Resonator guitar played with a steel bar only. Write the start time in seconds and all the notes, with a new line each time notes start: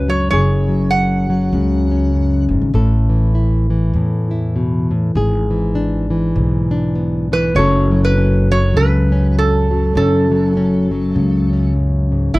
0.10 C#5
0.30 C#5
0.91 F#5
7.33 B4
7.56 C#5
8.05 B4
8.52 C#5
8.77 B4
9.38 A4
9.97 A4
12.34 E4